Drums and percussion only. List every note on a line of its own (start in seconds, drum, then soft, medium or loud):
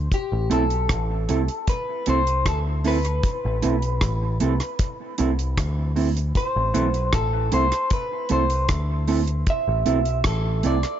0.12 kick loud
0.12 closed hi-hat medium
0.51 closed hi-hat medium
0.70 closed hi-hat soft
0.89 kick loud
0.89 cross-stick loud
0.89 closed hi-hat medium
1.29 closed hi-hat medium
1.48 closed hi-hat soft
1.67 kick loud
1.67 closed hi-hat loud
2.06 closed hi-hat medium
2.27 closed hi-hat medium
2.46 kick loud
2.46 cross-stick loud
2.46 closed hi-hat medium
2.84 open hi-hat medium
3.05 closed hi-hat medium
3.23 kick loud
3.23 closed hi-hat medium
3.62 closed hi-hat medium
3.82 closed hi-hat soft
4.01 kick loud
4.01 cross-stick loud
4.01 closed hi-hat medium
4.40 closed hi-hat medium
4.60 cross-stick medium
4.60 closed hi-hat medium
4.79 kick loud
4.79 closed hi-hat loud
5.18 closed hi-hat medium
5.39 closed hi-hat medium
5.58 kick loud
5.58 cross-stick loud
5.58 closed hi-hat medium
5.96 open hi-hat medium
6.17 closed hi-hat medium
6.35 kick loud
6.35 closed hi-hat medium
6.75 closed hi-hat medium
6.94 closed hi-hat soft
7.13 kick loud
7.13 cross-stick loud
7.13 closed hi-hat medium
7.52 closed hi-hat medium
7.72 cross-stick medium
7.72 closed hi-hat medium
7.90 kick loud
7.90 closed hi-hat medium
8.29 closed hi-hat medium
8.50 closed hi-hat medium
8.69 kick loud
8.69 cross-stick loud
8.69 closed hi-hat medium
9.08 open hi-hat medium
9.28 closed hi-hat medium
9.47 kick loud
9.47 closed hi-hat medium
9.86 closed hi-hat medium
10.05 closed hi-hat soft
10.24 kick medium
10.24 cross-stick loud
10.24 closed hi-hat medium
10.63 closed hi-hat medium
10.83 cross-stick medium
10.83 closed hi-hat medium